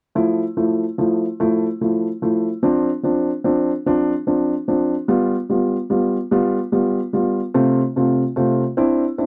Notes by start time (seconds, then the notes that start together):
0.15 F3 A3 E4
0.57 F3 A3 E4
0.98 F3 A3 E4
1.40 F3 A3 E4
1.81 F3 A3 E4
2.22 F3 A3 E4
2.63 F3 C4 D4
3.03 F3 C4 D4
3.44 F3 C4 D4
3.86 F3 C4 D4
4.27 F3 C4 D4
4.68 F3 C4 D4
5.08 G3 B3 F4
5.50 G3 B3 F4
5.90 G3 B3 F4
6.31 G3 B3 F4
6.72 G3 B3 F4
7.13 G3 B3 F4
7.54 C3 A3 C4 F4
7.96 C3 A3 C4 F4
8.36 C3 A3 C4 F4
8.77 C4 D4 E4
9.18 C4 D4 E4